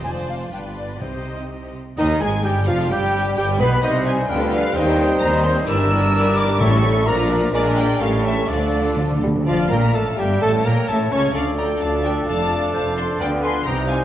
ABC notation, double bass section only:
X:1
M:2/4
L:1/8
Q:1/4=129
K:Cm
V:1 name="Double bass section" clef=bass
F,,,2 G,,,2 | C,,3 z | E,, A,,, G,,, F,,, | G,,,2 G,,, =B,,, |
C,,2 D,,2 | E,,2 E,,2 | [K:Dm] G,,,4 | A,,,2 B,,,2 |
B,,,2 A,,,2 | D,,3 z | F,,, B,,, A,,, G,,, | A,,, B,,, A,,, ^C,, |
D,,2 D,,2 | F,,,2 F,,,2 | [K:Gphr] D,,2 C,,2 |]